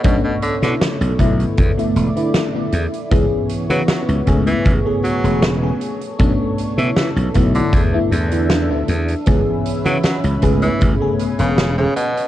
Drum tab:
HH |x-xxxxxxxxxxx-xx|x-xxxxxxx-xxx-xx|x-xxxxxxx-xxx-xx|x-xxxxxxx-xxx-xx|
SD |---oo-------o---|----o-------o---|----o-------o---|----o-------o---|
BD |o-----o-o-------|o-----o-o-------|o-----o-o-------|o-----o-o-------|